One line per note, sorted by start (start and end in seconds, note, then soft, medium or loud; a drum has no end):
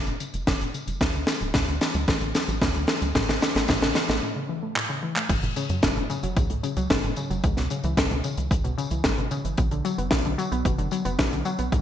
0.07 0.19 F#1 medium
0.07 0.20 A2 medium
0.07 closed hi-hat medium
0.07 tambourine soft
0.20 0.30 C#3 medium
0.20 closed hi-hat medium
0.20 tambourine medium
0.34 0.46 F#1 medium
0.34 0.40 F#3 medium
0.34 closed hi-hat medium
0.34 tambourine soft
0.47 0.59 F#1 loud
0.47 0.57 G#2 loud
0.47 kick loud
0.47 snare medium
0.47 closed hi-hat medium
0.47 tambourine soft
0.61 0.73 F#1 medium
0.61 0.73 A2 medium
0.61 closed hi-hat medium
0.61 tambourine soft
0.74 0.84 C#3 medium
0.74 closed hi-hat medium
0.74 tambourine medium
0.87 0.99 F#1 medium
0.87 0.93 F#3 medium
0.87 closed hi-hat medium
0.87 tambourine soft
1.01 1.13 D2 loud
1.01 1.11 A2 loud
1.01 kick loud
1.01 snare medium
1.01 closed hi-hat loud
1.01 tambourine soft
1.14 1.26 D2 medium
1.14 1.27 D3 medium
1.14 closed hi-hat soft
1.14 tambourine soft
1.27 1.37 E3 medium
1.27 snare medium
1.27 closed hi-hat medium
1.27 tambourine medium
1.41 1.53 D1 medium
1.41 1.47 F#3 medium
1.41 closed hi-hat medium
1.41 tambourine soft
1.54 1.66 D2 loud
1.54 1.64 A2 loud
1.54 kick loud
1.54 snare medium
1.54 closed hi-hat loud
1.54 tambourine soft
1.68 1.80 D2 medium
1.68 1.80 D3 medium
1.68 closed hi-hat medium
1.68 tambourine soft
1.81 1.91 E3 medium
1.81 snare medium
1.81 closed hi-hat medium
1.81 tambourine medium
1.94 2.06 D2 medium
1.94 2.00 F#3 medium
1.94 closed hi-hat medium
1.94 tambourine soft
2.08 2.20 A1 loud
2.08 2.18 A2 loud
2.08 kick loud
2.08 snare medium
2.08 closed hi-hat loud
2.08 tambourine soft
2.21 2.33 A1 medium
2.21 2.34 D3 medium
2.21 closed hi-hat medium
2.21 tambourine soft
2.35 2.44 E3 medium
2.35 snare medium
2.35 closed hi-hat medium
2.35 tambourine medium
2.48 2.60 A1 medium
2.48 2.54 F#3 medium
2.48 closed hi-hat medium
2.48 tambourine soft
2.61 2.73 D2 loud
2.61 2.71 A2 loud
2.61 kick loud
2.61 snare medium
2.61 closed hi-hat loud
2.61 tambourine soft
2.75 2.87 D2 medium
2.75 2.88 D3 medium
2.75 closed hi-hat medium
2.75 tambourine soft
2.87 2.98 E3 medium
2.87 snare medium
2.87 closed hi-hat medium
2.87 tambourine medium
3.02 3.14 D2 medium
3.02 3.08 F#3 medium
3.02 closed hi-hat medium
3.02 tambourine soft
3.15 3.27 A1 loud
3.15 3.25 A2 loud
3.15 kick loud
3.15 snare medium
3.15 closed hi-hat medium
3.15 tambourine soft
3.28 3.40 A1 medium
3.28 3.41 C#3 medium
3.28 snare medium
3.28 closed hi-hat medium
3.28 tambourine soft
3.42 3.52 E3 medium
3.42 snare medium
3.42 closed hi-hat medium
3.42 tambourine medium
3.55 3.67 A1 medium
3.55 3.61 A3 medium
3.55 snare medium
3.55 closed hi-hat soft
3.55 tambourine soft
3.68 3.81 A1 loud
3.68 3.78 A2 loud
3.68 kick loud
3.68 snare medium
3.68 closed hi-hat loud
3.68 tambourine soft
3.82 3.94 A1 medium
3.82 3.95 C#3 medium
3.82 snare medium
3.82 closed hi-hat medium
3.82 tambourine soft
3.95 4.05 E3 medium
3.95 snare medium
3.95 closed hi-hat medium
3.95 tambourine medium
4.09 4.21 A1 medium
4.09 4.15 A3 medium
4.09 snare medium
4.09 closed hi-hat medium
4.09 tambourine soft
4.22 4.32 A2 loud
4.36 4.48 C#3 medium
4.49 4.59 E3 medium
4.63 4.68 A3 medium
4.76 4.86 A2 loud
4.76 clap loud
4.89 5.02 C#3 medium
5.03 5.12 E3 medium
5.16 5.22 A3 medium
5.16 clap medium
5.29 5.41 F#1 loud
5.29 5.42 G#2 medium
5.29 kick loud
5.29 closed hi-hat loud
5.29 crash loud
5.29 tambourine soft
5.43 5.55 F#1 medium
5.43 5.53 A2 medium
5.43 closed hi-hat medium
5.43 tambourine soft
5.56 5.69 C#3 loud
5.56 closed hi-hat medium
5.56 tambourine medium
5.69 5.81 F#2 medium
5.69 5.75 F#3 medium
5.69 closed hi-hat medium
5.69 tambourine soft
5.82 5.95 F#1 loud
5.82 5.96 G#2 medium
5.82 kick loud
5.82 snare loud
5.82 closed hi-hat medium
5.82 tambourine soft
5.96 6.08 F#1 medium
5.96 6.06 A2 medium
5.96 closed hi-hat medium
5.96 tambourine soft
6.10 6.23 C#3 loud
6.10 closed hi-hat medium
6.10 tambourine medium
6.23 6.35 F#1 medium
6.23 6.29 F#3 medium
6.23 closed hi-hat medium
6.23 tambourine soft
6.37 6.48 C#2 loud
6.37 6.49 G#2 medium
6.37 kick loud
6.37 closed hi-hat medium
6.37 tambourine soft
6.50 6.62 C#2 medium
6.50 6.60 A2 medium
6.50 closed hi-hat medium
6.50 tambourine soft
6.63 6.76 C#3 loud
6.63 closed hi-hat medium
6.63 tambourine medium
6.77 6.89 C#2 medium
6.77 6.83 F#3 medium
6.77 closed hi-hat medium
6.77 tambourine soft
6.90 7.02 F#1 loud
6.90 7.03 G#2 medium
6.90 kick loud
6.90 snare loud
6.90 closed hi-hat loud
6.90 tambourine soft
7.03 7.15 F#1 medium
7.03 7.13 A2 medium
7.03 closed hi-hat medium
7.03 tambourine soft
7.16 7.30 C#3 loud
7.16 closed hi-hat medium
7.16 tambourine medium
7.30 7.42 F#1 medium
7.30 7.36 F#3 medium
7.30 closed hi-hat medium
7.30 tambourine soft
7.44 7.56 C#2 loud
7.44 7.57 G#2 medium
7.44 kick loud
7.44 closed hi-hat loud
7.44 tambourine soft
7.57 7.69 C#2 medium
7.57 7.67 B2 medium
7.57 snare soft
7.57 closed hi-hat medium
7.57 tambourine soft
7.70 7.83 C#3 loud
7.70 closed hi-hat medium
7.70 tambourine medium
7.83 7.96 C#2 medium
7.83 7.90 E3 medium
7.83 closed hi-hat medium
7.83 tambourine soft
7.97 8.09 C#2 loud
7.97 8.10 G#2 medium
7.97 kick loud
7.97 snare loud
7.97 closed hi-hat loud
7.97 tambourine soft
8.11 8.23 C#2 medium
8.11 8.20 B2 medium
8.11 closed hi-hat medium
8.11 tambourine soft
8.24 8.37 C#3 loud
8.24 closed hi-hat medium
8.24 tambourine medium
8.37 8.49 C#2 medium
8.37 8.43 E3 medium
8.37 closed hi-hat medium
8.37 tambourine soft
8.51 8.63 C#2 loud
8.51 8.64 G#2 medium
8.51 kick loud
8.51 closed hi-hat loud
8.51 tambourine soft
8.64 8.76 C#2 medium
8.64 8.74 B2 medium
8.64 closed hi-hat medium
8.64 tambourine soft
8.78 8.90 C#3 loud
8.78 closed hi-hat medium
8.78 tambourine medium
8.91 9.03 C#2 medium
8.91 8.97 E3 medium
8.91 closed hi-hat medium
8.91 tambourine soft
9.04 9.16 G#1 loud
9.04 9.17 G#2 medium
9.04 kick loud
9.04 snare loud
9.04 closed hi-hat loud
9.04 tambourine soft
9.18 9.30 G#1 medium
9.18 9.28 B2 medium
9.18 closed hi-hat medium
9.18 tambourine soft
9.31 9.44 C#3 loud
9.31 closed hi-hat medium
9.31 tambourine medium
9.45 9.57 G#1 medium
9.45 9.50 E3 medium
9.45 closed hi-hat medium
9.45 tambourine soft
9.57 9.70 B1 loud
9.57 9.71 B2 medium
9.57 kick loud
9.57 closed hi-hat medium
9.57 tambourine soft
9.71 9.83 B1 medium
9.71 9.81 D3 medium
9.71 closed hi-hat medium
9.71 tambourine soft
9.85 9.98 F#3 loud
9.85 closed hi-hat medium
9.85 tambourine medium
9.98 10.10 F#1 medium
9.98 10.04 B3 medium
9.98 closed hi-hat medium
9.98 tambourine soft
10.11 10.23 B1 loud
10.11 10.24 B2 medium
10.11 kick loud
10.11 snare loud
10.11 closed hi-hat loud
10.11 tambourine soft
10.25 10.37 B1 medium
10.25 10.35 D3 medium
10.25 closed hi-hat medium
10.25 tambourine soft
10.38 10.51 F#3 loud
10.38 closed hi-hat medium
10.38 tambourine medium
10.52 10.64 B1 medium
10.52 10.58 B3 medium
10.52 closed hi-hat medium
10.52 tambourine soft
10.65 10.77 F#1 loud
10.65 10.78 B2 medium
10.65 kick loud
10.65 closed hi-hat loud
10.65 tambourine soft
10.78 10.90 F#1 medium
10.78 10.88 D3 medium
10.78 closed hi-hat medium
10.78 tambourine soft
10.91 11.05 F#3 loud
10.91 closed hi-hat medium
10.91 tambourine medium
11.05 11.17 F#1 medium
11.05 11.11 B3 medium
11.05 closed hi-hat medium
11.05 tambourine soft
11.19 11.31 B1 loud
11.19 11.31 B2 medium
11.19 kick loud
11.19 snare loud
11.19 closed hi-hat medium
11.19 tambourine soft
11.32 11.44 B1 medium
11.32 11.42 D3 medium
11.32 closed hi-hat medium
11.32 tambourine soft
11.45 11.58 F#3 loud
11.45 closed hi-hat medium
11.45 tambourine medium
11.58 11.71 B1 medium
11.58 11.65 B3 medium
11.58 closed hi-hat medium
11.58 tambourine soft
11.72 11.82 C#2 loud
11.72 11.82 G#2 medium
11.72 kick loud
11.72 closed hi-hat loud
11.72 tambourine soft